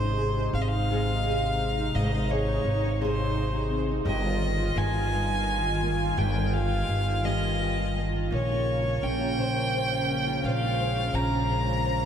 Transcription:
Already playing: upright bass G#1, nylon-string guitar G#2 G#4, analog synth pad C3 G#3 D#4, violin C5
0.02 nylon-string guitar D#4
0.18 nylon-string guitar G#4
0.37 nylon-string guitar D#4
0.53 upright bass G#1, nylon-string guitar C4, violin F5
0.61 violin D#5
0.68 violin F5
0.73 nylon-string guitar D#4
0.91 nylon-string guitar G#2 G#4
1.09 nylon-string guitar D#4
1.26 nylon-string guitar G#4
1.43 nylon-string guitar D#4
1.78 nylon-string guitar D#4
1.95 upright bass G#1, nylon-string guitar G#2 G#4, violin D#5
2.15 nylon-string guitar D#4
2.31 nylon-string guitar G#4, violin C#5
2.49 nylon-string guitar D#4
2.65 upright bass G#1
2.83 nylon-string guitar D#4
3.01 nylon-string guitar G#2 G#4, violin C5
3.18 nylon-string guitar D#4
3.35 nylon-string guitar G#4
3.53 nylon-string guitar D#4
3.70 nylon-string guitar C4
3.88 nylon-string guitar D#4
4.05 upright bass G1, nylon-string guitar G2 G4, analog synth pad D#3 F4, violin D#5
4.23 nylon-string guitar F4
4.59 nylon-string guitar F4
4.76 upright bass G1, nylon-string guitar A#3, violin G#5
4.94 nylon-string guitar F4
5.12 nylon-string guitar G2
5.30 nylon-string guitar F4
5.66 nylon-string guitar F4
5.83 nylon-string guitar A#3
6.00 nylon-string guitar F4
6.17 upright bass G1, nylon-string guitar G2 G4, violin G5
6.36 nylon-string guitar F4
6.53 nylon-string guitar G4, violin F5
6.72 nylon-string guitar F4
6.89 upright bass G1, nylon-string guitar A#3
7.06 nylon-string guitar F4
7.24 nylon-string guitar G2 G4, violin D#5
7.42 nylon-string guitar F4
7.59 nylon-string guitar G4
7.78 nylon-string guitar F4
7.95 nylon-string guitar A#3
8.13 nylon-string guitar F4
8.31 upright bass A#1, nylon-string guitar A#2, analog synth pad C#3 A#3 C#4, violin C#5
8.49 nylon-string guitar F4
8.85 nylon-string guitar F4
9.02 upright bass A#1, nylon-string guitar C#4, violin G5
9.21 nylon-string guitar F4
9.38 nylon-string guitar A#2 C5
9.57 nylon-string guitar F4
9.74 nylon-string guitar C5
9.92 nylon-string guitar F4
10.10 nylon-string guitar C#4
10.27 nylon-string guitar F4
10.43 upright bass A#1, nylon-string guitar A#2 C5, analog synth pad G#3, violin F5
10.63 nylon-string guitar F4
10.80 nylon-string guitar C5
10.96 nylon-string guitar F4
11.14 upright bass A#1, nylon-string guitar C#4, violin A#5
11.32 nylon-string guitar F4
11.49 nylon-string guitar A#2 C5
11.67 nylon-string guitar F4
11.84 nylon-string guitar C5

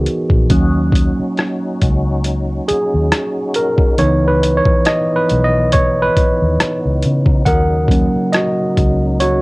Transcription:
Already playing: tine electric piano E3 B3 D#4 F#4 G#4 A#4 B4
0.06 closed hi-hat
0.30 fingered electric bass A#1, kick
0.50 fingered electric bass D#2, tine electric piano F#3 A#3 C#4, tonewheel organ C#4 D#4 F#4, kick, closed hi-hat
0.92 kick, closed hi-hat
1.20 muted fingered electric bass stroke
1.37 cross-stick, closed hi-hat
1.82 fingered electric bass C#2, kick, closed hi-hat
2.24 closed hi-hat
2.68 tine electric piano G#4, muted fingered electric bass stroke, closed hi-hat
2.94 fingered electric bass D#2
3.12 cross-stick, closed hi-hat
3.54 tine electric piano A#4, closed hi-hat
3.78 kick
3.98 fingered electric bass C#2, tine electric piano E3 B3 D#4 C#5, tonewheel organ E3 B3, closed hi-hat
4.28 tine electric piano B4
4.43 closed hi-hat
4.57 tine electric piano C#5
4.65 muted fingered electric bass stroke, kick
4.85 tine electric piano D#5, cross-stick, closed hi-hat
5.16 tine electric piano B4
5.29 fingered electric bass B1, closed hi-hat
5.44 tine electric piano D#5
5.72 tine electric piano C#5, kick, closed hi-hat
6.02 tine electric piano B4
6.17 muted fingered electric bass stroke, kick, closed hi-hat
6.42 fingered electric bass D#2
6.60 cross-stick, closed hi-hat
6.85 fingered electric bass C#2
7.02 fingered electric bass C#3, closed hi-hat
7.26 kick
7.45 fingered electric bass D#2, tonewheel organ C#3 F#3 D#4, tine electric piano A#4 F#5, kick, closed hi-hat
7.88 tine electric piano F#3 A#3 C#4, kick, closed hi-hat
8.16 muted fingered electric bass stroke
8.32 tine electric piano F#4 D#5, cross-stick, closed hi-hat
8.77 fingered electric bass C#2, kick, closed hi-hat
9.20 tine electric piano F#4 C#5, closed hi-hat

